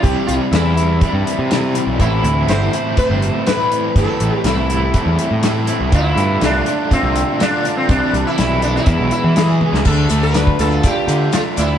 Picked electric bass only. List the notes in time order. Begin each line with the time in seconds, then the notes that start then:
0.04 C2
0.29 C2
0.52 E2
1.13 G2
1.39 C3
1.87 B1
2.00 A1
2.24 D2
2.48 G1
3.10 G1
3.96 G1
4.20 A1
4.44 C2
5.06 E2
5.31 A2
5.81 C2
5.92 D2
6.16 G2
6.42 C2
7.03 C2
7.89 C2
8.13 C2
8.39 B1
8.87 E2
8.99 B1
9.24 E3
9.73 C#2
9.86 D2
10.10 D2
10.60 D2
11.08 D3
11.58 D2